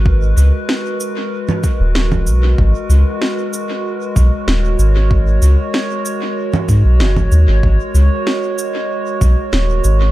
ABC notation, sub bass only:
X:1
M:4/4
L:1/16
Q:1/4=95
K:G#m
V:1 name="Sub bass" clef=bass
G,,,2 C,, z8 D,,,3 B,,,2 | G,,, z C,, z6 z B,,, z D,,,2 G,,,2- | G,,,2 C,, z6 z G,, B,,, F,,,2 D,, G,,, | G,,, z C,, z6 z B,,, z D,,,2 G,,,2 |]